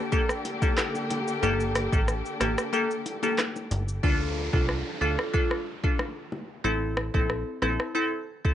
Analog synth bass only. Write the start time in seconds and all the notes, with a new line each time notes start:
1.43 G1
1.93 A1
2.41 A1
3.71 G1
4.04 D2
4.54 C2
5.01 D2
6.65 A1
7.14 A#1
7.62 A#1